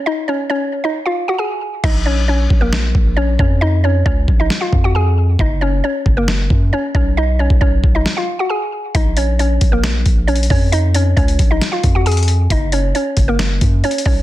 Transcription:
<<
  \new Staff \with { instrumentName = "Synth pluck" } { \time 4/4 \key bes \phrygian \tempo 4 = 135 <ees' ees''>8 <des' des''>8 <des' des''>8. <ees' ees''>8 <f' f''>8 <ges' ges''>16 <aes' aes''>4 | <ees' ees''>8 <des' des''>8 <des' des''>8. <bes bes'>4~ <bes bes'>16 <des' des''>8 <des' des''>8 | <ees' ees''>8 <des' des''>8 <des' des''>8. <ees' ees''>8 <f' f''>8 <ges' ges''>16 <aes' aes''>4 | <ees' ees''>8 <des' des''>8 <des' des''>8. <bes bes'>4~ <bes bes'>16 <des' des''>8 <des' des''>8 |
<dis' dis''>8 <cis' cis''>8 <cis' cis''>8. <dis' dis''>8 <f' f''>8 <fis' fis''>16 <aes' aes''>4 | <ees' ees''>8 <des' des''>8 <des' des''>8. <bes bes'>4~ <bes bes'>16 <des' des''>8 <des' des''>8 | <ees' ees''>8 <des' des''>8 <des' des''>8. <ees' ees''>8 <f' f''>8 <ges' ges''>16 <aes' aes''>4 | <ees' ees''>8 <des' des''>8 <des' des''>8. <bes bes'>4~ <bes bes'>16 <des' des''>8 <des' des''>8 | }
  \new Staff \with { instrumentName = "808-style bass" } { \clef bass \time 4/4 \key bes \phrygian r1 | bes,,4. bes,,4 bes,,4 f,8~ | f,4 des,8 bes,,8 r8 f,4. | ges,,4 r8 ges,,4 ges,8 r8 ces,8~ |
ces,8. b,,16 b,,8 b,,8 r2 | bes,,4. bes,,4 bes,,4 f,8~ | f,4 des,8 bes,,8 r8 f,4. | ges,,4 r8 ges,,4 ges,8 r8 ces,8 | }
  \new DrumStaff \with { instrumentName = "Drums" } \drummode { \time 4/4 r4 r4 r4 r4 | <cymc bd>4 r8 bd8 sn8 bd8 r8 bd8 | r4 bd8 bd8 sn8 bd8 r4 | bd4 r8 bd8 sn8 bd8 r8 bd8 |
r8. bd16 bd8 bd8 sn4 r4 | <hh bd>8 hh8 hh8 <hh bd>8 <hh sn>8 <hh bd>8 \tuplet 3/2 { hh16 hh16 hh16 <hho bd>16 r16 r16 } | hh8 hh8 <hh bd>16 hh16 <hh bd>8 <hh sn>8 <hh bd>8 hh32 hh32 hh32 hh32 hh8 | <hh bd>8 hh8 hh8 <hh bd>8 <hh sn>8 <hh bd>8 \tuplet 3/2 { hh16 hh16 hh16 <hho bd>16 r16 r16 } | }
>>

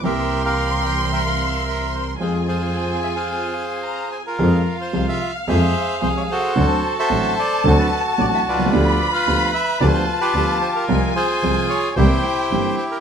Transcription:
<<
  \new Staff \with { instrumentName = "Violin section" } { \time 4/4 \key f \minor \tempo 4 = 111 c'''1 | aes''2. bes''8 aes''8 | f''1 | a''1 |
b''2 a''2 | aes''2 g''4. r8 | }
  \new Staff \with { instrumentName = "Bandoneon" } { \time 4/4 \key f \minor << { e''8. f''8. g''8 g''16 f''8. e''8 c''16 bes'16 | c''8 c''4 e''16 f''4.~ f''16 c''16 bes'16~ | bes'8. c''8 e''8 f''16 e''4 c''16 des''16 c''8~ | c''8. e''8. d''8 c''16 b'8 a'16 d''16 e''16 d''8~ |
d''8. f''8. e''8 d''16 c''8 b'8. c''16 bes'16~ | bes'8 c''4 des''8 c''4. c''16 bes'16 | } \\ { <g' bes'>8. bes'4~ bes'16 <bes' e''>16 bes'4.~ bes'16 | <f' aes'>8 <f' aes'>4~ <f' aes'>16 <aes' c''>2 f'16~ | f'4.~ f'16 r16 <aes' c''>4. <ges' a'>8~ | <ges' a'>8. <a' c''>4~ <a' c''>16 <fis' a'>4. <f' b'>8~ |
<f' b'>8. b'4~ b'16 <f' b'>8. <f' g'>4 f'16~ | f'8 <f' aes'>4. <e' g'>2 | } >> }
  \new Staff \with { instrumentName = "String section" } { \time 4/4 \key f \minor <e c' bes'>1 | <c' f' aes'>1 | r1 | r1 |
r1 | r1 | }
  \new Staff \with { instrumentName = "Upright piano" } { \clef bass \time 4/4 \key f \minor <c, c e bes c' g'>1 | <f, f aes c' aes'>1 | <f, f aes c' aes'>8 r8 <c, c f aes c' aes'>8 r8 <f, f aes c' aes'>8 r8 <c, c f aes c' aes'>8 r8 | <d, d fis c' d' a'>8 r8 <a,, a, fis c' d' a'>8 r8 <d, d fis c' d' a'>8 r8 <a,, a, fis c' d' a'>8 r32 b,,32 c,32 des,32 |
<d, d f b d' g'>8 r8 <d, d f b d' g'>8 r8 <d, d f b d' g'>8 r8 <d, d f b d' g'>8 r8 | <c, c f aes c' aes'>8 r8 <c, c f aes c' aes'>8 r8 <c, c e bes c' g'>8 r8 <g,, g, e bes c' g'>8 r8 | }
  \new Staff \with { instrumentName = "Double bass" } { \clef bass \time 4/4 \key f \minor c,1 | f,2 r2 | f,8 r8 c,8 r8 f,8 r8 c,8 r8 | d,8 r8 a,,8 r8 d,8 r8 a,,8 c,8 |
d,8 r8 d,8 r8 d,8 r8 d,8 r8 | c,8 r8 c,8 r8 c,8 r8 g,,8 r8 | }
>>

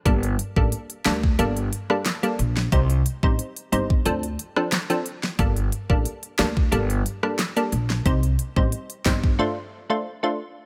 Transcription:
<<
  \new Staff \with { instrumentName = "Synth stab" } { \time 4/4 \key g \minor \tempo 4 = 90 <g bes d' a'>16 r8 <g bes d' a'>8. <g bes d' a'>8 <g bes d' a'>16 r8 <g bes d' a'>16 r16 <g bes d' a'>16 r8 | <g c' ees' c''>16 r8 <g c' ees' c''>8. <g c' ees' c''>8 <f c' d' a'>16 r8 <f c' d' a'>16 r16 <f c' d' a'>16 r8 | <g bes d' a'>16 r8 <g bes d' a'>8. <g bes d' a'>8 <g bes d' a'>16 r8 <g bes d' a'>16 r16 <g bes d' a'>16 r8 | <g c' ees' c''>16 r8 <g c' ees' c''>8. <g c' ees' c''>8 <a d' f' c''>16 r8 <a d' f' c''>16 r16 <a d' f' c''>16 r8 | }
  \new Staff \with { instrumentName = "Upright bass" } { \clef bass \time 4/4 \key g \minor g,,8 r16 a,,16 r8 d,8 g,,8 r4 bes,,8 | c,8 r16 a,,16 r8 g,,8 d,8 r4. | g,,8 r16 a,,16 r8 d,8 g,,8 r4 bes,,8 | c,8 r16 a,,16 r8 g,,8 r2 | }
  \new DrumStaff \with { instrumentName = "Drums" } \drummode { \time 4/4 <hh bd>16 hh16 hh16 bd16 hh16 hh16 <hc hh sn>16 bd16 hh16 hh16 hh16 ss16 <hc hh sn>16 hh16 hh16 sn16 | <hh bd>16 hh16 hh16 bd16 hh16 hh16 hh16 bd16 hh16 hh16 hh16 ss16 <hc hh sn>16 hh16 hh16 sn16 | <hh bd>16 hh16 hh16 bd16 hh16 hh16 <hc hh sn>16 bd16 hh16 hh16 hh16 ss16 <hc hh sn>16 hh16 hh16 sn16 | <hh bd>16 hh16 hh16 bd16 hh16 hh16 <hc hh bd sn>16 bd16 r4 r4 | }
>>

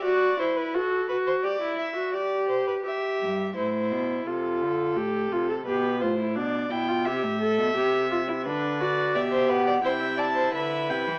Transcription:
<<
  \new Staff \with { instrumentName = "Violin" } { \time 4/4 \key c \major \tempo 4 = 86 r1 | r1 | r1 | r8 d''8 e''8 fis''8 g''8 a''8 e''8 g''8 | }
  \new Staff \with { instrumentName = "Violin" } { \time 4/4 \key c \major d''8 c''16 b'16 a'8 b'16 c''16 d''8 e''8 d''8 c''16 b'16 | e''4 c''4 a'2 | b'8 c''8 d''8 g''8 e''2 | b'4 d''16 c''16 b'16 d''16 c''16 e''16 d''16 c''16 b'4 | }
  \new Staff \with { instrumentName = "Viola" } { \time 4/4 \key c \major fis'8 e'8 fis'8 fis'8 g'16 e'8 fis'16 g'4 | g'4 e'4 f'4 g'8 f'16 a'16 | g'8 f'16 e'16 d'8 e'16 f'16 g'8 a'8 g'8 f'16 e'16 | d'8 fis'8 g'4 e'2 | }
  \new Staff \with { instrumentName = "Cello" } { \clef bass \time 4/4 \key c \major r1 | r8 g,8 a,8 b,8 c8 d8 a,8 c8 | b,8 a,8 b,8 b,8 c16 a,8 b,16 c4 | d4 b,4 c4 d8 c16 e16 | }
>>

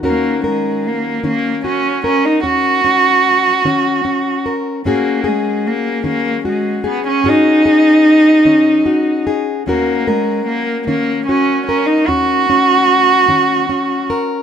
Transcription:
<<
  \new Staff \with { instrumentName = "Steel-string acoustic guitar" } { \time 6/8 \key ees \minor \tempo 4. = 50 << { <des' ges' bes'>8 bes'4 des'8 ges'8 bes'8 | des'8 des'4 des'8 des'8 bes'8 | <des' ges' aes'>8 aes'4 des'8 ges'8 aes'8 | <des' ges' aes'>8 aes'4 des'8 ges'8 aes'8 |
<des' ges' bes'>8 bes'4 des'8 ges'8 bes'8 | des'8 des'4 des'8 des'8 bes'8 | } \\ { <ees, ees>4. ees4 r8 | ees,4 r8 ees4 r8 | aes,4 r8 ees4 r8 | aes,4 r8 ees4 r8 |
ees,4 r8 ees4 r8 | ees,4 r8 ees4 r8 | } >> }
  \new Staff \with { instrumentName = "Cello" } { \time 6/8 \key ees \minor bes8 aes8 bes8 bes8 des'8 des'16 ees'16 | ges'2~ ges'8 r8 | bes8 aes8 bes8 bes8 aes8 ces'16 des'16 | ees'2~ ees'8 r8 |
bes8 aes8 bes8 bes8 des'8 des'16 ees'16 | ges'2~ ges'8 r8 | }
>>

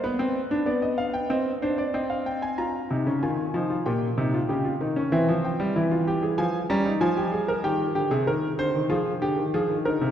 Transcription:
<<
  \new Staff \with { instrumentName = "Grand piano" } { \time 4/4 \key f \minor \tempo 4 = 95 << { b'4 d''16 ees''16 f''16 g''16 ees''8 c''16 d''16 ees''16 f''16 g''16 aes''16 | bes''4 aes''4 g''2 | e''8 g''4. aes''8 bes''8 aes''4 | g''8 g'16 aes'16 bes'8 c''8 f'8 g'8 aes'8 bes'8 | } \\ { b16 c'8 d'16 b4 c'8 d'8 c'4 | f'8 ees'16 des'16 f'8 ees'16 f'16 g'8 ees'16 f'16 g'16 f'16 ees'16 des'16 | c'4 e'16 f'16 g'16 aes'16 f'8 des'16 ees'16 f'16 g'16 aes'16 bes'16 | g'2 aes'8 r8 f'8 ees'8 | } >> }
  \new Staff \with { instrumentName = "Grand piano" } { \clef bass \time 4/4 \key f \minor r1 | r8 c16 des16 ees8 f8 bes,8 c8 des8 ees8 | e16 f8 g16 e4 f8 g8 f4 | ees8 d16 c16 ees8 d16 ees16 f8 d16 ees16 f16 ees16 d16 c16 | }
>>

